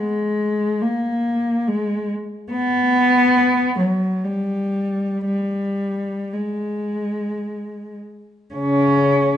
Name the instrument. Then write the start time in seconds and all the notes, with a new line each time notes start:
cello
0.00 G#3
0.82 A#3
1.68 G#3
2.52 B3
3.80 F#3
4.25 G3
5.26 G3
6.33 G#3
8.54 C#3 C#4